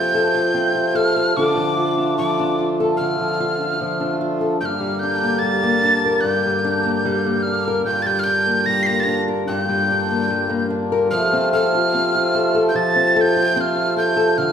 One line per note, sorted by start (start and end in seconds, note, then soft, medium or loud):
0.00 1.32 C3 medium
0.00 1.35 F3 medium
0.00 4.57 A3 medium
0.00 0.53 C4 medium
0.00 0.33 F4 medium
0.00 4.57 F4 medium
0.00 0.13 A4 medium
0.00 4.56 A4 medium
0.00 0.97 G6 loud
0.14 0.94 A4 medium
0.34 0.74 F4 medium
0.54 1.30 C4 medium
0.75 1.31 F4 medium
0.95 1.15 A4 medium
0.95 1.38 F6 loud
1.16 1.31 A4 medium
1.37 11.09 D3 medium
1.37 2.99 D3 medium
1.37 1.54 F3 medium
1.37 1.97 D4 medium
1.37 1.76 F4 medium
1.37 2.79 A4 medium
1.37 2.17 D6 loud
1.56 2.16 F3 medium
1.77 2.58 F4 medium
1.97 2.39 D4 medium
2.18 3.18 F3 medium
2.18 2.68 D6 medium
2.39 3.60 D4 medium
2.59 3.39 F4 medium
2.80 4.40 A4 medium
2.97 4.57 D3 medium
2.97 4.15 F6 medium
3.19 3.80 F3 medium
3.40 4.20 F4 medium
3.61 4.00 D4 medium
3.81 4.61 F3 medium
4.00 5.03 D4 medium
4.21 4.56 F4 medium
4.41 4.56 A4 medium
4.61 6.23 G2 medium
4.61 11.09 A#3 medium
4.61 7.84 G4 medium
4.61 11.09 A#4 medium
4.61 4.66 G6 medium
4.65 5.01 F6 medium
4.80 5.42 G3 medium
4.99 5.84 D4 medium
4.99 5.40 G6 medium
5.23 5.63 A#3 medium
5.39 6.44 G3 medium
5.39 6.22 A6 loud
5.63 6.83 A#3 medium
5.84 6.63 D4 medium
6.06 7.66 A#4 medium
6.21 7.85 G2 medium
6.21 7.44 G6 medium
6.46 7.04 G3 medium
6.64 7.46 D4 medium
6.84 7.25 A#3 medium
7.05 7.82 G3 medium
7.27 8.45 A#3 medium
7.42 7.85 F6 medium
7.47 8.24 D4 medium
7.68 7.82 A#4 medium
7.85 9.47 G2 medium
7.85 14.52 F4 medium
7.85 8.03 G6 loud
8.02 8.66 G3 medium
8.02 8.08 A6 loud
8.07 8.20 G6 loud
8.19 8.25 F6 loud
8.24 9.05 D4 medium
8.24 8.67 G6 loud
8.46 8.86 A#3 soft
8.66 9.68 G3 medium
8.66 8.84 A#6 loud
8.83 9.01 A#6 loud
8.83 8.87 C7 loud
8.87 10.09 A#3 medium
9.00 9.04 A6 loud
9.00 9.21 A#6 loud
9.07 9.89 D4 medium
9.28 10.91 A#4 medium
9.48 11.12 G2 medium
9.48 10.66 G6 loud
9.69 10.29 G3 medium
9.90 10.69 D4 medium
10.11 10.48 A#3 medium
10.30 11.07 G3 medium
10.50 11.11 A#3 medium
10.70 11.11 D4 medium
10.92 11.07 A#4 medium
11.11 14.35 C3 medium
11.11 12.74 F3 medium
11.11 14.52 A3 medium
11.11 14.34 A4 loud
11.11 11.49 F6 medium
11.33 11.93 C4 medium
11.53 12.34 A4 medium
11.53 12.64 F6 loud
11.75 12.14 F4 medium
11.94 12.94 C4 medium
12.15 13.35 F4 medium
12.35 12.54 A4 medium
12.55 13.15 A4 medium
12.69 12.77 G6 medium
12.75 14.52 F3 medium
12.75 13.17 A6 loud
12.96 13.55 C4 medium
13.16 13.95 A4 medium
13.16 13.22 A6 medium
13.21 13.57 G6 loud
13.36 13.75 F4 medium
13.56 14.33 C4 medium
13.56 13.62 G6 medium
13.61 13.97 F6 loud
13.76 14.33 F4 medium
13.96 14.15 A4 medium
13.96 14.39 G6 loud
14.16 14.32 A4 medium
14.38 14.52 D3 medium
14.38 14.52 A4 medium
14.38 14.52 F6 loud